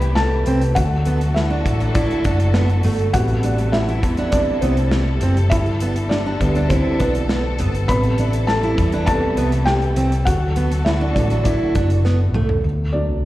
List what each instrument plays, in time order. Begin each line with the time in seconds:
Already playing: picked electric bass C2, felt piano C3 G3 B3 G4 A4 B4 G5 A5 B5, string section C3 G3 A3 E4 G4
0.02 closed hi-hat
0.15 felt piano A4 A5, snare
0.46 picked electric bass C2, steel-string acoustic guitar C4, closed hi-hat
0.62 closed hi-hat
0.75 picked electric bass D2, felt piano D3 F#3 A3 F#4 F#5, string section D3 F#3 F#4 A4, kick, closed hi-hat
1.05 steel-string acoustic guitar B3, closed hi-hat
1.21 closed hi-hat
1.34 felt piano E4 E5, snare
1.50 steel-string acoustic guitar D4
1.66 picked electric bass A1, kick, closed hi-hat
1.80 steel-string acoustic guitar D4, closed hi-hat
1.94 felt piano D4 D5, steel-string acoustic guitar E4, kick, closed hi-hat
2.11 closed hi-hat
2.24 picked electric bass F#1, steel-string acoustic guitar D4, kick, closed hi-hat
2.40 closed hi-hat
2.54 steel-string acoustic guitar B3, snare
2.69 closed hi-hat
2.83 picked electric bass G1, steel-string acoustic guitar A3, open hi-hat
2.99 closed hi-hat
3.13 picked electric bass A1, felt piano C3 G3 B3 F#4 F#5, string section C3 G3 E4 A4, kick, closed hi-hat
3.28 closed hi-hat
3.43 steel-string acoustic guitar D4, closed hi-hat
3.58 closed hi-hat
3.72 felt piano E4 E5, snare
3.88 steel-string acoustic guitar E4, closed hi-hat
4.03 picked electric bass E2, kick, closed hi-hat
4.17 steel-string acoustic guitar D4, closed hi-hat
4.31 felt piano C3 G3 B3 D4 D5, kick, closed hi-hat
4.61 picked electric bass C2, steel-string acoustic guitar B3, felt piano C4 C5, closed hi-hat
4.77 closed hi-hat
4.91 snare
5.21 picked electric bass F#1, steel-string acoustic guitar C4, closed hi-hat
5.37 closed hi-hat
5.50 picked electric bass G1, string section B2 D3 D4, felt piano E4 E5, kick, closed hi-hat
5.66 closed hi-hat
5.80 steel-string acoustic guitar B3, closed hi-hat
5.96 closed hi-hat
6.09 felt piano D4 D5, snare
6.26 steel-string acoustic guitar D4
6.40 picked electric bass D2, felt piano D3 G3 B3, kick, closed hi-hat
6.55 steel-string acoustic guitar D4, closed hi-hat
6.69 felt piano C4 C5, steel-string acoustic guitar E4, kick, closed hi-hat
6.99 picked electric bass B1, felt piano B3 B4, steel-string acoustic guitar D4, kick, closed hi-hat
7.15 closed hi-hat
7.29 steel-string acoustic guitar B3, snare
7.58 picked electric bass G1, steel-string acoustic guitar B3, closed hi-hat
7.75 closed hi-hat
7.88 picked electric bass A1, felt piano C3 G3 B3 B4 B5, string section C3 G3 A3 E4, kick, closed hi-hat
8.03 closed hi-hat
8.18 steel-string acoustic guitar D4, closed hi-hat
8.33 closed hi-hat
8.47 felt piano A4 A5, snare
8.63 steel-string acoustic guitar E4, closed hi-hat
8.78 picked electric bass E2, kick, closed hi-hat
8.92 steel-string acoustic guitar D4, closed hi-hat
9.06 felt piano C3 G3 B3 A4 A5, kick, closed hi-hat
9.37 picked electric bass C2, steel-string acoustic guitar B3, closed hi-hat
9.52 closed hi-hat
9.66 felt piano G4 G5, snare
9.82 closed hi-hat
9.96 picked electric bass C2, steel-string acoustic guitar C4, closed hi-hat
10.12 closed hi-hat
10.25 picked electric bass D2, string section D3 F#3 F#4 A4, felt piano F#4 F#5, kick, closed hi-hat
10.56 steel-string acoustic guitar B3, closed hi-hat
10.71 closed hi-hat
10.85 felt piano E4 E5, snare
11.01 steel-string acoustic guitar D4
11.14 picked electric bass A1, felt piano D3 F#3 A3 D4 D5, kick, closed hi-hat
11.30 steel-string acoustic guitar D4, closed hi-hat
11.44 felt piano D4 D5, steel-string acoustic guitar E4, kick, closed hi-hat
11.75 picked electric bass F#1, steel-string acoustic guitar D4, kick, closed hi-hat
11.90 closed hi-hat
12.05 steel-string acoustic guitar B3, snare
12.34 picked electric bass C2, steel-string acoustic guitar A3, mid tom
12.49 floor tom
12.64 picked electric bass D2
12.92 felt piano F#3 A3 D4 D5
13.09 picked electric bass C2